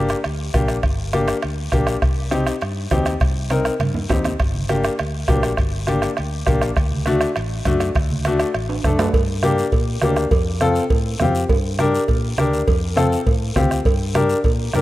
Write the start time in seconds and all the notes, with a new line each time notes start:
Already playing: G1 A#3 D4 G4
0.09 bombo rim, high timbale, short guiro
0.24 D2, bombo rim, high timbale, long guiro
0.53 A#1 A#3 D4 G4, bombo low, bombo rim, high conga, high timbale, short guiro
0.68 bombo rim, high timbale, short guiro
0.83 G1, bombo low, bombo rim, high timbale, long guiro
1.13 A#3 D4 G4, bombo rim, high conga, high timbale, short guiro
1.28 bombo rim, high timbale, short guiro
1.42 D2, bombo rim, high timbale, long guiro
1.72 A#1 A#3 D4 G4, bombo low, bombo rim, high conga, high timbale, short guiro
1.87 bombo rim, high timbale, short guiro
2.02 C2, bombo low, bombo rim, high timbale, long guiro
2.31 C4 D#4 G4, bombo rim, high conga, high timbale, short guiro
2.47 bombo rim, high timbale, short guiro
2.61 G2, bombo rim, high timbale, long guiro
2.90 D#2 C4 D#4 G4, bombo low, bombo rim, high conga, high timbale, low timbale, short guiro
3.05 bombo rim, high timbale, short guiro
3.20 C2, bombo low, bombo rim, high timbale, long guiro
3.50 C4 D#4 A#4, bombo rim, high conga, high timbale, short guiro
3.65 bombo rim, high timbale, short guiro
3.80 G2, bombo rim, high conga, high timbale, long guiro
3.94 low conga
4.09 D#2 C4 D#4 G4, bombo low, bombo rim, low conga, high timbale, low timbale, short guiro
4.24 bombo rim, low conga, high timbale, short guiro
4.40 G1, bombo low, bombo rim, high timbale, long guiro
4.54 high conga
4.69 A#3 D4 G4, bombo rim, high conga, high timbale, short guiro
4.84 bombo rim, high timbale, short guiro
4.99 D2, bombo rim, high timbale, long guiro
5.28 A#1 A#3 D4 G4, bombo low, bombo rim, high conga, high timbale, low timbale, short guiro
5.43 bombo rim, high timbale, short guiro
5.57 G1, bombo low, bombo rim, high timbale, long guiro
5.87 A#3 D4 G4, bombo rim, high conga, high timbale, short guiro
6.02 bombo rim, high timbale, short guiro
6.17 D2, bombo rim, high timbale, long guiro
6.46 A#1 A#3 D4 G4, bombo low, bombo rim, high conga, high timbale, short guiro
6.62 bombo rim, high timbale, short guiro
6.76 D2, bombo low, bombo rim, high timbale, long guiro
6.92 high conga
7.06 A3 D4 F#4, bombo rim, high conga, high timbale, short guiro
7.21 bombo rim, high timbale, short guiro
7.36 A1, bombo rim, high timbale, long guiro
7.65 F#2 A3 D4 F#4, bombo low, bombo rim, high conga, high timbale, short guiro
7.80 bombo rim, high timbale, short guiro
7.95 D2, bombo low, bombo rim, high timbale, long guiro
8.10 high conga
8.25 A3 D4 F#4, bombo rim, high conga, high timbale, short guiro
8.39 bombo rim, high timbale, short guiro
8.54 A1, bombo rim, high timbale, long guiro
8.69 high timbale
8.84 F#2 A3 D4 A4, bombo low, bombo rim, high conga, high timbale, short guiro
8.99 bombo rim, low timbale, short guiro
9.13 G2, bombo low, cowbell, high conga, long guiro
9.43 A#3 D4 G4, bombo rim, cowbell, high conga, short guiro
9.58 short guiro
9.72 A#2, bombo low, cowbell, long guiro
10.02 D2 A#3 D4 G4, bombo rim, cowbell, high conga, low timbale, short guiro
10.16 bombo rim, short guiro
10.31 F2, bombo low, cowbell, high conga, long guiro
10.60 C4 F4 A4, bombo rim, cowbell, high conga, short guiro
10.75 short guiro
10.90 A2, bombo low, cowbell, long guiro
11.20 F2 C4 F4 G4, bombo rim, cowbell, high conga, low conga, short guiro
11.35 short guiro
11.49 G2, bombo low, cowbell, high conga, long guiro
11.79 D4 G4 A#4, bombo rim, cowbell, high conga, short guiro
11.94 short guiro
12.08 A#2, bombo low, cowbell, high conga, long guiro
12.38 D2 D4 G4 A#4, bombo rim, cowbell, high conga, short guiro
12.53 short guiro
12.68 F2, bombo low, cowbell, high conga, long guiro
12.96 C4 F4 A4, bombo rim, cowbell, high conga, short guiro
13.12 short guiro
13.27 A2, bombo low, cowbell, long guiro
13.56 D2 C4 F4 G4, bombo low, bombo rim, cowbell, high conga, low conga, short guiro
13.71 bombo rim, short guiro
13.85 G2, bombo low, cowbell, long guiro
14.14 D4 G4 A#4, bombo rim, cowbell, high conga, short guiro
14.29 short guiro
14.44 A#2, bombo low, cowbell, long guiro
14.73 G2 D4 G4 A#4, bombo rim, cowbell, high conga, low timbale, short guiro